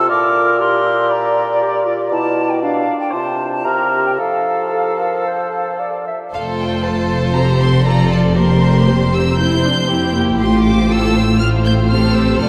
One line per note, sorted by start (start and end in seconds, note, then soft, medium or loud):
0.00 0.11 C3 medium
0.00 0.62 F4 medium
0.00 0.10 A4 medium
0.09 2.10 A#2 medium
0.09 0.59 A#4 soft
0.09 0.60 D6 medium
0.60 1.61 G4 medium
0.60 1.09 A#4 medium
0.60 1.13 C6 medium
1.09 2.09 D5 medium
1.09 1.87 A#5 medium
1.61 1.87 G4 medium
1.86 2.14 F4 medium
2.10 2.83 B2 medium
2.10 2.62 E4 soft
2.10 3.13 D5 medium
2.10 2.52 A5 medium
2.50 2.61 G5 soft
2.62 3.16 D4 medium
2.62 2.99 F5 medium
3.00 3.14 G5 medium
3.11 3.62 C3 soft
3.11 3.47 F4 soft
3.11 3.46 C5 soft
3.11 3.51 A5 medium
3.52 3.66 A5 medium
3.65 4.20 C3 soft
3.65 4.15 G4 soft
3.65 4.20 A#4 soft
3.65 4.05 A#5 medium
4.06 4.12 G5 soft
4.18 6.07 F3 soft
4.18 6.07 A4 soft
4.18 4.67 A4 soft
4.18 6.04 F5 medium
4.72 5.01 A4 soft
4.99 5.26 A#4 soft
5.27 5.81 C5 medium
5.80 6.07 D5 soft
6.07 6.19 E5 soft
6.33 10.37 F1 soft
6.33 10.37 F2 soft
6.33 7.32 A3 soft
6.33 7.32 F4 soft
6.33 6.83 A4 soft
6.33 6.83 C5 soft
6.33 6.42 F5 medium
6.60 6.85 G5 medium
6.85 7.35 A4 soft
6.85 7.87 C5 soft
6.85 7.36 A5 medium
7.35 7.84 C4 soft
7.35 7.86 G4 soft
7.35 7.84 A4 soft
7.35 7.61 A#5 medium
7.60 7.86 C6 medium
7.85 8.36 C4 soft
7.85 8.36 F4 soft
7.85 8.37 A4 soft
7.85 8.37 D5 soft
7.85 8.11 A#5 medium
8.12 8.20 A5 medium
8.36 8.63 A#3 soft
8.36 9.37 G4 soft
8.36 8.87 A#4 soft
8.36 8.88 C5 soft
8.36 9.13 C6 medium
8.62 8.87 A3 soft
8.88 9.14 A#3 soft
8.88 9.39 C5 soft
9.14 9.88 C4 soft
9.14 9.40 E6 medium
9.38 9.64 E4 soft
9.38 9.90 C5 soft
9.38 10.14 G6 medium
9.65 9.90 D4 soft
9.89 10.15 C4 soft
9.89 10.39 E4 soft
9.89 10.91 G4 medium
10.14 10.40 A#3 soft
10.40 12.37 A1 medium
10.40 12.38 A2 medium
10.40 11.91 A3 soft
10.40 11.92 F4 soft
10.40 11.15 C5 soft
10.40 10.64 C6 medium
10.65 10.90 D6 medium
10.90 11.16 A4 medium
10.90 11.40 E6 medium
11.16 11.24 C5 soft
11.39 12.40 C5 soft
11.39 11.47 F6 medium
11.65 11.73 G6 medium
11.90 12.42 C4 soft
11.90 12.42 G4 soft
11.90 12.42 A4 soft
11.90 12.15 F6 medium
12.14 12.40 E6 medium
12.40 12.49 F1 medium
12.40 12.49 F2 medium
12.40 12.49 A3 soft
12.40 12.49 F4 soft
12.40 12.49 A4 medium
12.40 12.49 D5 soft
12.40 12.49 F6 medium